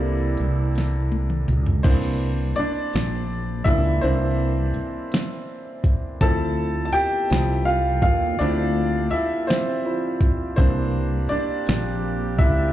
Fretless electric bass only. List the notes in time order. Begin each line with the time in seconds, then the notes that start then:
Already playing: C2
0.40 C2
1.49 C#2
1.85 C2
2.58 muted fretless electric bass stroke
2.95 A#1
3.66 C#2
4.04 C2
4.76 muted fretless electric bass stroke
6.21 D2
6.95 muted fretless electric bass stroke
7.31 C2
8.03 D#2
8.40 D2
9.13 muted fretless electric bass stroke
10.59 C2
11.32 muted fretless electric bass stroke
11.69 A#1
12.40 C#2